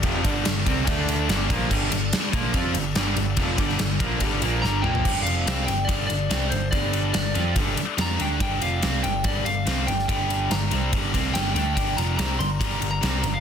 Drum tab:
CC |----------------|x---------------|----------------|x---------------|
RD |x-x-x-x-x-x-x-x-|--x-x-x-x-x-x-x-|x-x-x-x-x-x-----|--x-x-x-x-x-x-x-|
SD |----o-------o---|----o-------o---|---oo-------o---|----o-------o---|
T2 |----------------|----------------|--------------o-|----------------|
FT |----------------|----------------|---------------o|----------------|
BD |o-o---o-o-----o-|o-----o-o-------|o-o---o-o-------|o-------o-------|

CC |----------------|----------------|----------------|----------------|
RD |x-x-x-x-x-x-x-x-|x-x-x-x-x-x-x-x-|x-x-x-x-x-x-x-x-|x-x-x-x-x-x-x-x-|
SD |----o-------o---|----o-------o--o|----o-------o---|----o-------o---|
T2 |----------------|----------------|----------------|----------------|
FT |----------------|----------------|----------------|----------------|
BD |o-------o-------|o-------o-------|o-------o-o-----|o-------o-------|